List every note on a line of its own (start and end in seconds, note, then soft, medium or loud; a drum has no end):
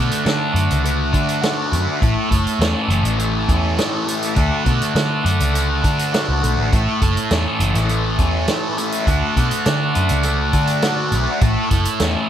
0.00 0.52 D3 medium
0.00 0.84 A3 medium
0.00 6.69 A3 medium
0.00 1.99 F#4 medium
0.00 1.99 D5 medium
0.00 9.04 A5 medium
0.11 closed hi-hat medium
0.24 0.53 D3 medium
0.24 1.12 D4 medium
0.24 snare loud
0.24 closed hi-hat medium
0.54 0.68 F#2 medium
0.54 2.01 D3 medium
0.54 closed hi-hat medium
0.71 1.11 C#2 medium
0.71 closed hi-hat medium
0.84 1.71 A3 medium
0.84 closed hi-hat medium
1.13 1.74 D3 medium
1.13 2.01 D4 medium
1.13 kick medium
1.13 closed hi-hat medium
1.29 closed hi-hat medium
1.41 2.01 F#4 medium
1.41 snare loud
1.41 closed hi-hat medium
1.71 1.86 F#2 medium
1.71 2.30 A3 medium
1.71 closed hi-hat medium
2.01 2.15 A1 loud
2.01 3.48 A2 medium
2.01 4.35 E4 medium
2.01 4.35 C#5 medium
2.01 kick loud
2.01 closed hi-hat medium
2.30 2.45 F#1 medium
2.30 3.18 A3 medium
2.30 kick medium
2.30 closed hi-hat medium
2.47 closed hi-hat medium
2.59 2.73 E2 medium
2.59 3.47 C#4 medium
2.59 snare loud
2.59 closed hi-hat medium
2.88 3.02 F#1 medium
2.88 4.36 E3 medium
2.88 closed hi-hat medium
3.02 3.45 A1 medium
3.02 closed hi-hat medium
3.18 4.06 A3 medium
3.18 closed hi-hat medium
3.48 3.76 E2 medium
3.48 4.36 C#4 medium
3.48 kick medium
3.48 closed hi-hat medium
3.78 4.37 E4 medium
3.78 snare loud
3.78 closed hi-hat medium
4.07 4.65 A3 medium
4.07 closed hi-hat medium
4.23 closed hi-hat medium
4.36 4.50 D2 loud
4.36 5.23 D3 medium
4.36 6.69 F#4 medium
4.36 6.69 D5 medium
4.36 kick loud
4.36 closed hi-hat medium
4.65 4.80 B2 medium
4.65 5.53 A3 medium
4.65 kick medium
4.65 closed hi-hat medium
4.82 closed hi-hat medium
4.95 5.23 D3 medium
4.95 5.82 D4 medium
4.95 snare loud
4.95 closed hi-hat medium
5.25 5.39 F#2 medium
5.25 6.72 D3 medium
5.25 closed hi-hat medium
5.40 5.81 C#2 medium
5.40 closed hi-hat medium
5.54 6.42 A3 medium
5.54 closed hi-hat medium
5.83 6.28 D3 medium
5.83 6.71 D4 medium
5.83 kick medium
5.83 closed hi-hat medium
5.99 closed hi-hat medium
6.13 6.72 F#4 medium
6.13 snare loud
6.13 closed hi-hat medium
6.29 6.41 C#2 medium
6.43 6.56 B1 medium
6.43 7.02 A3 medium
6.43 closed hi-hat medium
6.58 6.71 A1 medium
6.72 6.86 A1 loud
6.72 8.19 A2 medium
6.72 9.05 A3 medium
6.72 9.05 E4 medium
6.72 9.06 C#5 medium
6.72 kick loud
6.72 closed hi-hat medium
7.02 7.15 F#1 medium
7.02 7.90 A3 medium
7.02 kick medium
7.02 closed hi-hat medium
7.17 closed hi-hat medium
7.31 7.45 E2 medium
7.31 8.18 C#4 medium
7.31 snare loud
7.31 closed hi-hat medium
7.60 7.74 F#1 loud
7.60 9.07 E3 medium
7.60 closed hi-hat medium
7.74 8.16 A1 medium
7.74 snare soft
7.74 closed hi-hat medium
7.89 8.77 A3 medium
7.89 closed hi-hat medium
8.19 8.46 E2 medium
8.19 9.07 C#4 medium
8.19 kick medium
8.19 closed hi-hat medium
8.48 9.07 E4 medium
8.48 snare loud
8.48 closed hi-hat medium
8.78 9.36 A3 medium
8.78 closed hi-hat medium
8.92 closed hi-hat medium
9.06 9.21 D2 loud
9.06 9.93 D3 medium
9.06 12.29 A3 medium
9.06 11.40 F#4 medium
9.06 11.39 D5 medium
9.06 12.29 A5 medium
9.06 kick loud
9.06 closed hi-hat medium
9.36 9.50 B2 medium
9.36 10.24 A3 medium
9.36 kick medium
9.36 closed hi-hat medium
9.51 closed hi-hat medium
9.66 9.93 D3 medium
9.66 10.52 D4 medium
9.66 snare loud
9.66 closed hi-hat medium
9.95 10.09 F#2 medium
9.95 11.42 D3 medium
9.95 closed hi-hat medium
10.09 10.51 C#2 medium
10.09 closed hi-hat medium
10.23 11.11 A3 medium
10.23 closed hi-hat medium
10.53 11.13 D3 loud
10.53 11.42 D4 medium
10.53 kick medium
10.53 closed hi-hat medium
10.67 closed hi-hat medium
10.82 11.42 F#4 medium
10.82 snare loud
10.82 closed hi-hat medium
11.12 11.26 B1 medium
11.12 11.70 A3 medium
11.12 closed hi-hat medium
11.41 11.56 A1 loud
11.41 12.29 A2 medium
11.41 12.29 E4 medium
11.41 12.29 C#5 medium
11.41 kick loud
11.41 closed hi-hat medium
11.71 11.85 F#1 medium
11.71 12.29 A3 medium
11.71 kick medium
11.71 closed hi-hat medium
11.85 closed hi-hat medium
12.00 12.14 E2 medium
12.00 12.29 C#4 medium
12.00 snare loud
12.00 closed hi-hat medium